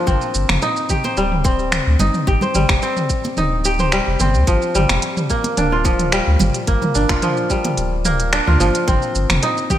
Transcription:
Already playing: F3 G3 A#3 D4 F4
0.07 G1 C4, kick, mid tom, shaker
0.22 shaker
0.34 G1, shaker
0.49 F1, finger snap, mid tom, muted conga, shaker
0.62 D#4, shaker
0.76 shaker
0.89 G4, kick, mid tom, shaker
1.04 C5, muted conga, shaker
1.17 D1 G3, shaker
1.32 mid tom
1.45 C4, kick, shaker
1.59 shaker
1.72 finger snap, mid tom, shaker
1.87 D2
1.99 G1 D#4, muted conga, low conga, shaker
2.14 mid tom, shaker
2.27 G1 G4, kick, shaker
2.41 C5, low conga, shaker
2.55 G1 G3, mid tom, shaker
2.69 F1, finger snap, kick, muted conga, shaker
2.82 C4, shaker
2.97 mid tom, shaker
3.10 kick, shaker
3.24 muted conga, shaker
3.37 D1 D#4, mid tom, shaker
3.65 G4, shaker
3.79 C5, mid tom, shaker
3.92 G3, finger snap, shaker
4.07 F1
4.20 G1 C4, mid tom, high conga, shaker
4.34 D2, shaker
4.47 G1 F3, kick, closed hi-hat, shaker
4.62 shaker
4.75 G1 G3, mid tom, shaker
4.89 F1, finger snap, closed hi-hat, muted conga, shaker
5.02 closed hi-hat, shaker
5.17 mid tom, shaker
5.30 A#3, kick, shaker
5.44 closed hi-hat, muted conga, shaker
5.57 D1 D4, closed hi-hat, mid tom, shaker
5.72 F4
5.85 F3, kick, shaker
5.99 closed hi-hat, mid tom, shaker
6.12 G3, finger snap, closed hi-hat, shaker
6.27 D2
6.39 G1, mid tom, muted conga, low conga, shaker
6.54 closed hi-hat, shaker
6.67 G1 A#3, kick, closed hi-hat, shaker
6.82 mid tom, low conga, shaker
6.95 G1 D4, shaker
7.09 F1 F4, finger snap, kick, closed hi-hat, muted conga, shaker
7.22 F3, closed hi-hat, mid tom, shaker
7.37 shaker
7.50 G3, kick, shaker
7.65 closed hi-hat, mid tom, muted conga, shaker
7.77 D1, closed hi-hat, shaker
8.05 A#3, mid tom, shaker
8.20 closed hi-hat, shaker
8.33 D4, finger snap, closed hi-hat, shaker
8.47 D2 F4, mid tom
8.60 G1 F3, high conga, shaker
8.75 closed hi-hat, shaker
8.88 G1 C4, kick, closed hi-hat, mid tom, shaker
9.02 shaker
9.15 G1, shaker
9.30 F1, finger snap, closed hi-hat, mid tom, muted conga, shaker
9.43 D#4, closed hi-hat, shaker
9.57 shaker
9.70 G4, kick, mid tom, shaker

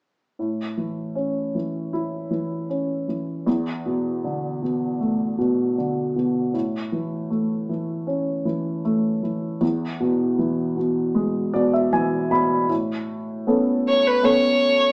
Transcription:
0.39 A2
0.77 E3
1.15 C#4
1.55 E3
1.93 E4
2.30 E3
2.70 C#4
3.08 E3
3.46 E2
3.86 B2
4.24 D3
4.62 B2
5.00 A3
5.38 B2
5.78 D3
6.16 B2
6.54 A2
6.92 E3
7.30 A3
7.69 E3
8.07 C#4
8.45 E3
8.85 A3
9.23 E3
9.61 E2
10.00 B2
10.38 E3
10.77 B2
11.15 G#3
11.54 B2 D5
11.73 E5
11.93 E3 G#5
12.31 B2 B5
12.69 A2
13.47 B3 C#4 A4
13.89 C#5
14.07 B4
14.23 B3 C#4 A4 C#5

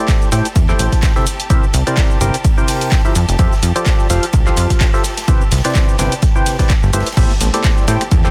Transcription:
Already playing: A3 E4 G4 A4 C5 D5 A5
0.08 kick, snare, clap, closed hi-hat, ride, shaker
0.22 shaker
0.32 A2 A3 E4 G4 A4 C5 G5, snare, open hi-hat, ride, shaker
0.45 closed hi-hat, shaker
0.56 E2, kick, closed hi-hat, ride, shaker
0.69 A3 E4 G4 A4 C5 G5, clap, shaker
0.79 A1, open hi-hat, ride, shaker
0.92 kick, snare, closed hi-hat, shaker
1.02 kick, snare, clap, closed hi-hat, ride, shaker
1.16 C3 E4 G4 A4 C5 E5, snare, shaker
1.27 open hi-hat, ride, shaker
1.40 closed hi-hat, shaker
1.50 C3 E4 G4 A#4 C5 E5, kick, closed hi-hat, ride, shaker
1.63 shaker
1.73 C2, open hi-hat, ride, shaker
1.87 C3 E4 G4 A#4 C5 D5, closed hi-hat, shaker
1.97 kick, snare, clap, closed hi-hat, ride, shaker
2.11 shaker
2.21 G1 C3 E4 G4 A#4 C5 G5, open hi-hat, ride, shaker
2.34 closed hi-hat, shaker
2.45 kick, closed hi-hat, ride, shaker
2.58 C3 E4 G4 A#4 C5 G5, shaker
2.67 open hi-hat, shaker
2.81 closed hi-hat, shaker
2.91 kick, snare, clap, closed hi-hat, ride, shaker
3.05 F3 E4 G4 A#4 C5 E5, ride, shaker
3.15 F2, open hi-hat, ride, shaker
3.29 F1, snare, closed hi-hat, shaker
3.39 F2 F3 F4 G4 A4 C5 E5, kick, closed hi-hat, ride, shaker
3.52 snare, shaker
3.63 F2, open hi-hat, ride, shaker
3.76 F3 F4 G4 A4 C5 D5, closed hi-hat, shaker
3.86 kick, snare, clap, closed hi-hat, ride, shaker
4.00 shaker
4.09 F1 F3 F4 G4 A4 C5 F5, snare, open hi-hat, ride, shaker
4.23 closed hi-hat, shaker
4.33 C2, kick, closed hi-hat, ride, shaker
4.46 F3 F4 G4 A4 C5 F5, clap, shaker
4.56 F2, open hi-hat, ride, shaker
4.70 kick, snare, closed hi-hat, shaker
4.80 kick, snare, clap, closed hi-hat, ride, shaker
4.94 F4 G4 A4 C5 E5, snare, shaker
5.04 snare, open hi-hat, ride, shaker
5.17 snare, closed hi-hat, ride, shaker
5.28 C3 E4 G4 B4 C5 E5, kick, closed hi-hat, ride, shaker
5.41 shaker
5.51 C2, snare, open hi-hat, ride, shaker
5.58 snare, ride
5.64 C3 E4 G4 B4 C5 D5, snare, closed hi-hat, ride, shaker
5.70 snare, ride
5.75 kick, snare, clap, closed hi-hat, ride, shaker
5.89 shaker
5.98 G1 C3 E4 G4 B4 C5 G5, snare, clap, open hi-hat, ride, shaker
6.12 closed hi-hat, shaker
6.22 kick, snare, closed hi-hat, ride, shaker
6.36 C3 E4 G4 B4 C5 G5, shaker
6.46 snare, open hi-hat, ride, shaker
6.59 C3 E4 G4 B4 C5 D5, kick, snare, closed hi-hat, ride, shaker
6.69 kick, snare, clap, closed hi-hat, ride, shaker
6.83 G1, ride, shaker
6.93 A3 E4 G4 B4 C5 E5, open hi-hat, ride, shaker
7.00 snare, ride
7.06 snare, closed hi-hat, ride, shaker
7.12 snare, ride
7.17 A1 A3 E4 G4 A4 C5 E5 A5, kick, closed hi-hat, ride, crash, downlifter, shaker
7.30 snare, shaker
7.41 A1, open hi-hat, ride, shaker
7.54 A3 E4 G4 A4 C5 D5, closed hi-hat, shaker
7.64 kick, snare, clap, closed hi-hat, ride, shaker
7.77 shaker
7.87 A2 A3 E4 G4 A4 C5 G5, finger snap, snare, open hi-hat, ride, shaker
8.01 finger snap, closed hi-hat, shaker
8.11 E2, kick, closed hi-hat, ride, shaker
8.25 A3 E4 G4 A4 C5 G5, clap, shaker

